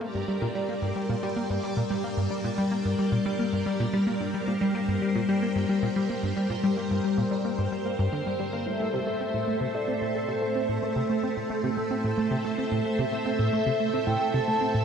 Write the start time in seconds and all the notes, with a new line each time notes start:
Already playing: C4 C5
0.01 G3 A#3 G4 A#4 D5
0.15 G2
0.28 G3
0.42 A#2
0.55 G3
0.69 A#3
0.82 G2
0.96 G3
1.09 A#2
1.23 G3
1.36 A#3
1.50 G2
1.63 G3
1.77 A#2
1.90 G3
2.04 A#3
2.17 G2
2.31 G3
2.44 A#2
2.58 G3
2.72 A#3
2.85 G2
2.99 G3
3.12 A#2
3.26 G3
3.39 A#3
3.53 G2
3.66 G3
3.80 A#2
3.93 G3
4.07 A#3
4.20 G2
4.34 G3 C5
4.48 A#2
4.61 G3
4.75 A#3
4.88 G2
5.02 G3
5.15 A#2
5.29 G3
5.42 A#3
5.56 G2
5.69 G3
5.83 A#2
5.96 G3
6.10 A#3
6.23 G2
6.37 G3
6.50 A#2
6.64 G3
6.77 A#3
6.91 G2
7.04 G3
7.18 A#2
7.31 G3
7.45 A#3
7.59 G2
7.72 G3
7.86 A#3
7.99 G2
8.13 D3
8.26 G3
8.40 G3
8.53 A#3
8.66 A2 A3 C4 A4 E5 A5
8.80 A3
8.94 C3 E5
9.07 A3
9.21 C4
9.34 A2
9.48 A3
9.61 C3
9.74 A3 D5
9.88 C4
10.02 A2 C5
10.15 A3
10.28 C3 C5
10.42 A3
10.56 C4
10.69 A2
10.83 A3 A4
10.96 C3
11.10 A3
11.23 C4
11.37 A2
11.50 A3
11.64 C3
11.77 A3
11.91 C4
12.04 A2
12.18 A3
12.31 C3
12.45 A3
12.58 C4
12.72 A2
12.85 A3
12.99 C3 E5
13.12 A3
13.25 C4 E5
13.39 A2
13.53 A3
13.66 C3
13.80 A3
13.94 C4
14.07 A2 G5
14.21 A3
14.34 C3 A5
14.48 A3
14.61 C4 A5
14.74 A2